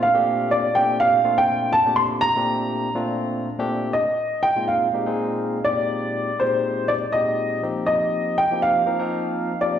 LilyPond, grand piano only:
\new Staff \with { instrumentName = "Grand piano" } { \time 4/4 \key bes \major \tempo 4 = 122 f''4 d''8 g''8 f''8. g''8. a''8 | c'''8 bes''4. r2 | \key bes \mixolydian ees''4 g''8 f''2 d''8~ | d''4 c''4 d''8 ees''4 r8 |
ees''4 g''8 f''2 d''8 | }